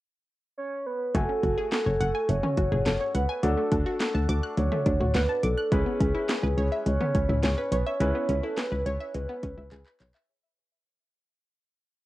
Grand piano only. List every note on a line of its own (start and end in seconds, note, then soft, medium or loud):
1.15 3.39 A3 medium
1.15 3.39 F#4 medium
1.15 3.39 G#5 medium
3.43 5.68 D4 medium
3.43 5.68 F#4 medium
3.43 5.68 A4 medium
5.72 7.96 C#4 medium
5.72 7.96 E4 medium
5.72 7.96 B4 medium
8.00 10.25 C#4 medium
8.00 10.25 E4 medium
8.00 10.25 B4 medium